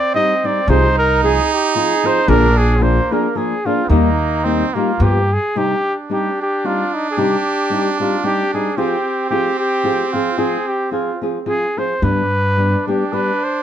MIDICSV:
0, 0, Header, 1, 5, 480
1, 0, Start_track
1, 0, Key_signature, -3, "major"
1, 0, Tempo, 536673
1, 609, Time_signature, 3, 2, 24, 8
1, 3485, Tempo, 549451
1, 4929, Key_signature, -3, "minor"
1, 5885, Tempo, 534759
1, 9245, Tempo, 545951
1, 12094, End_track
2, 0, Start_track
2, 0, Title_t, "Trumpet"
2, 0, Program_c, 0, 56
2, 0, Note_on_c, 0, 74, 94
2, 127, Note_off_c, 0, 74, 0
2, 132, Note_on_c, 0, 75, 99
2, 407, Note_on_c, 0, 74, 84
2, 421, Note_off_c, 0, 75, 0
2, 621, Note_on_c, 0, 72, 99
2, 635, Note_off_c, 0, 74, 0
2, 874, Note_off_c, 0, 72, 0
2, 880, Note_on_c, 0, 70, 104
2, 1081, Note_off_c, 0, 70, 0
2, 1105, Note_on_c, 0, 68, 91
2, 1344, Note_off_c, 0, 68, 0
2, 1370, Note_on_c, 0, 67, 74
2, 1563, Note_off_c, 0, 67, 0
2, 1583, Note_on_c, 0, 68, 93
2, 1843, Note_on_c, 0, 72, 106
2, 1856, Note_off_c, 0, 68, 0
2, 2046, Note_on_c, 0, 70, 111
2, 2060, Note_off_c, 0, 72, 0
2, 2301, Note_on_c, 0, 68, 98
2, 2315, Note_off_c, 0, 70, 0
2, 2527, Note_on_c, 0, 72, 87
2, 2541, Note_off_c, 0, 68, 0
2, 2792, Note_on_c, 0, 70, 70
2, 2805, Note_off_c, 0, 72, 0
2, 3011, Note_on_c, 0, 68, 77
2, 3024, Note_off_c, 0, 70, 0
2, 3270, Note_on_c, 0, 65, 87
2, 3283, Note_off_c, 0, 68, 0
2, 3480, Note_off_c, 0, 65, 0
2, 3485, Note_on_c, 0, 63, 78
2, 4186, Note_off_c, 0, 63, 0
2, 4245, Note_on_c, 0, 65, 77
2, 4471, Note_on_c, 0, 67, 91
2, 4484, Note_off_c, 0, 65, 0
2, 4739, Note_on_c, 0, 68, 89
2, 4752, Note_off_c, 0, 67, 0
2, 4953, Note_on_c, 0, 67, 100
2, 4966, Note_off_c, 0, 68, 0
2, 5293, Note_off_c, 0, 67, 0
2, 5433, Note_on_c, 0, 67, 82
2, 5665, Note_off_c, 0, 67, 0
2, 5688, Note_on_c, 0, 67, 82
2, 5897, Note_on_c, 0, 65, 86
2, 5911, Note_off_c, 0, 67, 0
2, 6154, Note_on_c, 0, 63, 72
2, 6167, Note_off_c, 0, 65, 0
2, 6299, Note_off_c, 0, 63, 0
2, 6304, Note_on_c, 0, 68, 82
2, 6365, Note_on_c, 0, 67, 86
2, 6378, Note_off_c, 0, 68, 0
2, 7103, Note_off_c, 0, 67, 0
2, 7108, Note_on_c, 0, 65, 75
2, 7324, Note_on_c, 0, 67, 99
2, 7338, Note_off_c, 0, 65, 0
2, 7580, Note_off_c, 0, 67, 0
2, 7586, Note_on_c, 0, 68, 84
2, 7785, Note_off_c, 0, 68, 0
2, 7794, Note_on_c, 0, 67, 82
2, 8241, Note_off_c, 0, 67, 0
2, 8269, Note_on_c, 0, 67, 90
2, 8516, Note_off_c, 0, 67, 0
2, 8529, Note_on_c, 0, 67, 91
2, 9015, Note_on_c, 0, 65, 76
2, 9029, Note_off_c, 0, 67, 0
2, 9239, Note_on_c, 0, 68, 84
2, 9252, Note_off_c, 0, 65, 0
2, 9497, Note_on_c, 0, 67, 90
2, 9510, Note_off_c, 0, 68, 0
2, 9711, Note_off_c, 0, 67, 0
2, 9716, Note_on_c, 0, 65, 65
2, 9961, Note_off_c, 0, 65, 0
2, 10210, Note_on_c, 0, 68, 96
2, 10470, Note_on_c, 0, 72, 79
2, 10484, Note_off_c, 0, 68, 0
2, 10691, Note_on_c, 0, 71, 106
2, 10704, Note_off_c, 0, 72, 0
2, 11433, Note_off_c, 0, 71, 0
2, 11437, Note_on_c, 0, 67, 80
2, 11657, Note_on_c, 0, 71, 106
2, 11670, Note_off_c, 0, 67, 0
2, 11926, Note_on_c, 0, 72, 84
2, 11939, Note_off_c, 0, 71, 0
2, 12094, Note_off_c, 0, 72, 0
2, 12094, End_track
3, 0, Start_track
3, 0, Title_t, "Nylon-string guitar"
3, 0, Program_c, 1, 24
3, 127, Note_on_c, 1, 55, 44
3, 135, Note_on_c, 1, 60, 48
3, 141, Note_on_c, 1, 63, 66
3, 144, Note_on_c, 1, 67, 64
3, 285, Note_off_c, 1, 55, 0
3, 289, Note_off_c, 1, 60, 0
3, 292, Note_off_c, 1, 63, 0
3, 293, Note_off_c, 1, 67, 0
3, 390, Note_on_c, 1, 55, 52
3, 395, Note_on_c, 1, 60, 57
3, 398, Note_on_c, 1, 63, 56
3, 404, Note_on_c, 1, 67, 62
3, 521, Note_off_c, 1, 55, 0
3, 524, Note_off_c, 1, 60, 0
3, 525, Note_off_c, 1, 63, 0
3, 529, Note_off_c, 1, 67, 0
3, 612, Note_on_c, 1, 48, 75
3, 614, Note_on_c, 1, 53, 72
3, 618, Note_on_c, 1, 60, 84
3, 620, Note_on_c, 1, 65, 84
3, 622, Note_on_c, 1, 68, 81
3, 769, Note_off_c, 1, 48, 0
3, 770, Note_off_c, 1, 53, 0
3, 772, Note_off_c, 1, 60, 0
3, 773, Note_off_c, 1, 65, 0
3, 774, Note_off_c, 1, 68, 0
3, 1095, Note_on_c, 1, 53, 55
3, 1098, Note_on_c, 1, 60, 64
3, 1104, Note_on_c, 1, 65, 58
3, 1108, Note_on_c, 1, 68, 66
3, 1252, Note_off_c, 1, 53, 0
3, 1253, Note_off_c, 1, 60, 0
3, 1256, Note_off_c, 1, 65, 0
3, 1259, Note_off_c, 1, 68, 0
3, 1565, Note_on_c, 1, 53, 47
3, 1572, Note_on_c, 1, 65, 62
3, 1573, Note_on_c, 1, 60, 62
3, 1580, Note_on_c, 1, 68, 70
3, 1723, Note_off_c, 1, 53, 0
3, 1726, Note_off_c, 1, 65, 0
3, 1727, Note_off_c, 1, 60, 0
3, 1730, Note_off_c, 1, 68, 0
3, 1820, Note_on_c, 1, 53, 59
3, 1826, Note_on_c, 1, 60, 65
3, 1829, Note_on_c, 1, 65, 57
3, 1837, Note_on_c, 1, 68, 67
3, 1952, Note_off_c, 1, 53, 0
3, 1956, Note_off_c, 1, 60, 0
3, 1957, Note_off_c, 1, 65, 0
3, 1961, Note_off_c, 1, 68, 0
3, 2036, Note_on_c, 1, 46, 75
3, 2040, Note_on_c, 1, 50, 94
3, 2041, Note_on_c, 1, 53, 82
3, 2045, Note_on_c, 1, 58, 91
3, 2047, Note_on_c, 1, 62, 88
3, 2047, Note_on_c, 1, 68, 84
3, 2194, Note_off_c, 1, 46, 0
3, 2196, Note_off_c, 1, 50, 0
3, 2197, Note_off_c, 1, 53, 0
3, 2199, Note_off_c, 1, 58, 0
3, 2200, Note_off_c, 1, 62, 0
3, 2200, Note_off_c, 1, 68, 0
3, 2504, Note_on_c, 1, 53, 65
3, 2513, Note_on_c, 1, 58, 52
3, 2514, Note_on_c, 1, 62, 63
3, 2521, Note_on_c, 1, 68, 60
3, 2671, Note_off_c, 1, 53, 0
3, 2675, Note_off_c, 1, 58, 0
3, 2676, Note_off_c, 1, 62, 0
3, 2679, Note_off_c, 1, 68, 0
3, 2779, Note_on_c, 1, 53, 57
3, 2784, Note_on_c, 1, 58, 52
3, 2789, Note_on_c, 1, 62, 60
3, 2792, Note_on_c, 1, 68, 66
3, 2913, Note_off_c, 1, 53, 0
3, 2915, Note_off_c, 1, 58, 0
3, 2917, Note_off_c, 1, 62, 0
3, 2919, Note_off_c, 1, 68, 0
3, 2998, Note_on_c, 1, 53, 58
3, 3005, Note_on_c, 1, 58, 46
3, 3009, Note_on_c, 1, 62, 53
3, 3017, Note_on_c, 1, 68, 59
3, 3158, Note_off_c, 1, 53, 0
3, 3161, Note_off_c, 1, 58, 0
3, 3163, Note_off_c, 1, 62, 0
3, 3167, Note_off_c, 1, 68, 0
3, 3265, Note_on_c, 1, 53, 53
3, 3272, Note_on_c, 1, 58, 54
3, 3274, Note_on_c, 1, 62, 60
3, 3281, Note_on_c, 1, 68, 52
3, 3397, Note_off_c, 1, 53, 0
3, 3400, Note_off_c, 1, 58, 0
3, 3401, Note_off_c, 1, 62, 0
3, 3404, Note_off_c, 1, 68, 0
3, 3484, Note_on_c, 1, 51, 73
3, 3488, Note_on_c, 1, 58, 80
3, 3489, Note_on_c, 1, 55, 70
3, 3491, Note_on_c, 1, 63, 72
3, 3494, Note_on_c, 1, 67, 77
3, 3640, Note_off_c, 1, 51, 0
3, 3642, Note_off_c, 1, 55, 0
3, 3642, Note_off_c, 1, 58, 0
3, 3643, Note_off_c, 1, 63, 0
3, 3644, Note_off_c, 1, 67, 0
3, 3967, Note_on_c, 1, 55, 49
3, 3972, Note_on_c, 1, 58, 52
3, 3976, Note_on_c, 1, 63, 51
3, 3979, Note_on_c, 1, 67, 60
3, 4120, Note_off_c, 1, 55, 0
3, 4122, Note_off_c, 1, 58, 0
3, 4124, Note_off_c, 1, 63, 0
3, 4126, Note_off_c, 1, 67, 0
3, 4230, Note_on_c, 1, 55, 53
3, 4237, Note_on_c, 1, 58, 62
3, 4238, Note_on_c, 1, 63, 56
3, 4243, Note_on_c, 1, 67, 62
3, 4358, Note_off_c, 1, 55, 0
3, 4361, Note_off_c, 1, 58, 0
3, 4362, Note_off_c, 1, 63, 0
3, 4364, Note_off_c, 1, 67, 0
3, 4440, Note_on_c, 1, 53, 57
3, 4449, Note_on_c, 1, 59, 56
3, 4455, Note_on_c, 1, 65, 71
3, 4456, Note_on_c, 1, 67, 65
3, 4602, Note_off_c, 1, 53, 0
3, 4607, Note_off_c, 1, 59, 0
3, 4609, Note_off_c, 1, 65, 0
3, 4610, Note_off_c, 1, 67, 0
3, 4935, Note_on_c, 1, 48, 66
3, 4937, Note_on_c, 1, 55, 61
3, 4939, Note_on_c, 1, 60, 60
3, 4943, Note_on_c, 1, 63, 59
3, 4945, Note_on_c, 1, 67, 70
3, 5089, Note_off_c, 1, 48, 0
3, 5091, Note_off_c, 1, 55, 0
3, 5092, Note_off_c, 1, 60, 0
3, 5094, Note_off_c, 1, 63, 0
3, 5095, Note_off_c, 1, 67, 0
3, 5406, Note_on_c, 1, 55, 43
3, 5412, Note_on_c, 1, 60, 44
3, 5416, Note_on_c, 1, 63, 57
3, 5421, Note_on_c, 1, 67, 48
3, 5565, Note_off_c, 1, 55, 0
3, 5568, Note_off_c, 1, 60, 0
3, 5570, Note_off_c, 1, 63, 0
3, 5572, Note_off_c, 1, 67, 0
3, 5885, Note_on_c, 1, 55, 46
3, 5889, Note_on_c, 1, 60, 48
3, 5893, Note_on_c, 1, 63, 55
3, 5897, Note_on_c, 1, 67, 61
3, 6042, Note_off_c, 1, 55, 0
3, 6044, Note_off_c, 1, 60, 0
3, 6046, Note_off_c, 1, 63, 0
3, 6048, Note_off_c, 1, 67, 0
3, 6360, Note_on_c, 1, 55, 64
3, 6361, Note_on_c, 1, 48, 61
3, 6364, Note_on_c, 1, 60, 74
3, 6364, Note_on_c, 1, 63, 73
3, 6369, Note_on_c, 1, 67, 73
3, 6518, Note_off_c, 1, 48, 0
3, 6518, Note_off_c, 1, 55, 0
3, 6519, Note_off_c, 1, 63, 0
3, 6520, Note_off_c, 1, 60, 0
3, 6522, Note_off_c, 1, 67, 0
3, 6832, Note_on_c, 1, 55, 51
3, 6838, Note_on_c, 1, 60, 52
3, 6847, Note_on_c, 1, 63, 50
3, 6849, Note_on_c, 1, 67, 57
3, 6993, Note_off_c, 1, 55, 0
3, 6996, Note_off_c, 1, 60, 0
3, 7001, Note_off_c, 1, 63, 0
3, 7002, Note_off_c, 1, 67, 0
3, 7100, Note_on_c, 1, 55, 46
3, 7102, Note_on_c, 1, 60, 54
3, 7108, Note_on_c, 1, 63, 57
3, 7116, Note_on_c, 1, 67, 56
3, 7231, Note_off_c, 1, 55, 0
3, 7232, Note_off_c, 1, 60, 0
3, 7235, Note_off_c, 1, 63, 0
3, 7239, Note_off_c, 1, 67, 0
3, 7314, Note_on_c, 1, 55, 55
3, 7316, Note_on_c, 1, 60, 50
3, 7324, Note_on_c, 1, 63, 54
3, 7329, Note_on_c, 1, 67, 62
3, 7474, Note_off_c, 1, 55, 0
3, 7475, Note_off_c, 1, 60, 0
3, 7479, Note_off_c, 1, 63, 0
3, 7481, Note_off_c, 1, 67, 0
3, 7583, Note_on_c, 1, 55, 52
3, 7592, Note_on_c, 1, 60, 50
3, 7593, Note_on_c, 1, 63, 59
3, 7598, Note_on_c, 1, 67, 54
3, 7712, Note_off_c, 1, 55, 0
3, 7716, Note_off_c, 1, 60, 0
3, 7717, Note_off_c, 1, 63, 0
3, 7719, Note_off_c, 1, 67, 0
3, 7794, Note_on_c, 1, 53, 74
3, 7797, Note_on_c, 1, 60, 60
3, 7802, Note_on_c, 1, 65, 85
3, 7808, Note_on_c, 1, 68, 81
3, 7953, Note_off_c, 1, 53, 0
3, 7954, Note_off_c, 1, 60, 0
3, 7956, Note_off_c, 1, 65, 0
3, 7959, Note_off_c, 1, 68, 0
3, 8273, Note_on_c, 1, 53, 57
3, 8283, Note_on_c, 1, 60, 51
3, 8287, Note_on_c, 1, 65, 66
3, 8287, Note_on_c, 1, 68, 59
3, 8432, Note_off_c, 1, 53, 0
3, 8437, Note_off_c, 1, 60, 0
3, 8439, Note_off_c, 1, 65, 0
3, 8439, Note_off_c, 1, 68, 0
3, 8749, Note_on_c, 1, 53, 46
3, 8756, Note_on_c, 1, 60, 61
3, 8760, Note_on_c, 1, 65, 61
3, 8766, Note_on_c, 1, 68, 57
3, 8912, Note_off_c, 1, 53, 0
3, 8916, Note_off_c, 1, 60, 0
3, 8918, Note_off_c, 1, 65, 0
3, 8920, Note_off_c, 1, 68, 0
3, 9018, Note_on_c, 1, 53, 54
3, 9024, Note_on_c, 1, 60, 56
3, 9028, Note_on_c, 1, 65, 61
3, 9035, Note_on_c, 1, 68, 65
3, 9152, Note_off_c, 1, 53, 0
3, 9155, Note_off_c, 1, 60, 0
3, 9157, Note_off_c, 1, 65, 0
3, 9161, Note_off_c, 1, 68, 0
3, 9235, Note_on_c, 1, 53, 69
3, 9237, Note_on_c, 1, 60, 70
3, 9239, Note_on_c, 1, 65, 77
3, 9245, Note_on_c, 1, 68, 74
3, 9395, Note_off_c, 1, 53, 0
3, 9396, Note_off_c, 1, 60, 0
3, 9397, Note_off_c, 1, 65, 0
3, 9400, Note_off_c, 1, 68, 0
3, 9706, Note_on_c, 1, 53, 43
3, 9708, Note_on_c, 1, 60, 49
3, 9713, Note_on_c, 1, 65, 43
3, 9718, Note_on_c, 1, 68, 53
3, 9869, Note_off_c, 1, 53, 0
3, 9870, Note_off_c, 1, 60, 0
3, 9873, Note_off_c, 1, 65, 0
3, 9875, Note_off_c, 1, 68, 0
3, 9973, Note_on_c, 1, 53, 45
3, 9975, Note_on_c, 1, 60, 46
3, 9982, Note_on_c, 1, 65, 57
3, 9986, Note_on_c, 1, 68, 56
3, 10108, Note_off_c, 1, 53, 0
3, 10109, Note_off_c, 1, 60, 0
3, 10113, Note_off_c, 1, 65, 0
3, 10115, Note_off_c, 1, 68, 0
3, 10188, Note_on_c, 1, 53, 49
3, 10189, Note_on_c, 1, 60, 52
3, 10195, Note_on_c, 1, 65, 51
3, 10198, Note_on_c, 1, 68, 45
3, 10354, Note_off_c, 1, 53, 0
3, 10355, Note_off_c, 1, 60, 0
3, 10358, Note_off_c, 1, 65, 0
3, 10359, Note_off_c, 1, 68, 0
3, 10460, Note_on_c, 1, 53, 38
3, 10464, Note_on_c, 1, 60, 46
3, 10469, Note_on_c, 1, 65, 54
3, 10472, Note_on_c, 1, 68, 51
3, 10596, Note_off_c, 1, 53, 0
3, 10598, Note_off_c, 1, 60, 0
3, 10600, Note_off_c, 1, 65, 0
3, 10602, Note_off_c, 1, 68, 0
3, 10682, Note_on_c, 1, 43, 56
3, 10682, Note_on_c, 1, 55, 55
3, 10684, Note_on_c, 1, 50, 64
3, 10684, Note_on_c, 1, 59, 59
3, 10687, Note_on_c, 1, 62, 67
3, 10690, Note_on_c, 1, 67, 59
3, 10844, Note_off_c, 1, 43, 0
3, 10844, Note_off_c, 1, 55, 0
3, 10845, Note_off_c, 1, 50, 0
3, 10845, Note_off_c, 1, 59, 0
3, 10846, Note_off_c, 1, 62, 0
3, 10848, Note_off_c, 1, 67, 0
3, 11164, Note_on_c, 1, 55, 47
3, 11172, Note_on_c, 1, 59, 54
3, 11178, Note_on_c, 1, 62, 48
3, 11178, Note_on_c, 1, 67, 51
3, 11324, Note_off_c, 1, 55, 0
3, 11328, Note_off_c, 1, 59, 0
3, 11331, Note_off_c, 1, 62, 0
3, 11331, Note_off_c, 1, 67, 0
3, 11428, Note_on_c, 1, 55, 46
3, 11436, Note_on_c, 1, 59, 50
3, 11439, Note_on_c, 1, 62, 47
3, 11443, Note_on_c, 1, 67, 52
3, 11559, Note_off_c, 1, 55, 0
3, 11563, Note_off_c, 1, 59, 0
3, 11565, Note_off_c, 1, 62, 0
3, 11567, Note_off_c, 1, 67, 0
3, 11652, Note_on_c, 1, 55, 48
3, 11656, Note_on_c, 1, 59, 55
3, 11659, Note_on_c, 1, 62, 55
3, 11661, Note_on_c, 1, 67, 55
3, 11806, Note_off_c, 1, 55, 0
3, 11808, Note_off_c, 1, 59, 0
3, 11809, Note_off_c, 1, 62, 0
3, 11811, Note_off_c, 1, 67, 0
3, 12094, End_track
4, 0, Start_track
4, 0, Title_t, "Trumpet"
4, 0, Program_c, 2, 56
4, 0, Note_on_c, 2, 60, 85
4, 614, Note_on_c, 2, 63, 127
4, 627, Note_off_c, 2, 60, 0
4, 2040, Note_on_c, 2, 62, 104
4, 2054, Note_off_c, 2, 63, 0
4, 2518, Note_on_c, 2, 58, 85
4, 2531, Note_off_c, 2, 62, 0
4, 3267, Note_off_c, 2, 58, 0
4, 3429, Note_on_c, 2, 60, 75
4, 3476, Note_on_c, 2, 58, 93
4, 3489, Note_off_c, 2, 60, 0
4, 3960, Note_on_c, 2, 60, 114
4, 3973, Note_off_c, 2, 58, 0
4, 4221, Note_on_c, 2, 58, 91
4, 4234, Note_off_c, 2, 60, 0
4, 4710, Note_off_c, 2, 58, 0
4, 4942, Note_on_c, 2, 62, 106
4, 7797, Note_on_c, 2, 60, 103
4, 7811, Note_off_c, 2, 62, 0
4, 10467, Note_off_c, 2, 60, 0
4, 10697, Note_on_c, 2, 62, 92
4, 12094, Note_off_c, 2, 62, 0
4, 12094, End_track
5, 0, Start_track
5, 0, Title_t, "Upright bass"
5, 0, Program_c, 3, 32
5, 605, Note_on_c, 3, 36, 100
5, 1231, Note_off_c, 3, 36, 0
5, 2041, Note_on_c, 3, 34, 120
5, 2665, Note_off_c, 3, 34, 0
5, 3483, Note_on_c, 3, 39, 96
5, 4106, Note_off_c, 3, 39, 0
5, 4448, Note_on_c, 3, 43, 105
5, 4762, Note_off_c, 3, 43, 0
5, 10683, Note_on_c, 3, 43, 87
5, 11309, Note_off_c, 3, 43, 0
5, 12094, End_track
0, 0, End_of_file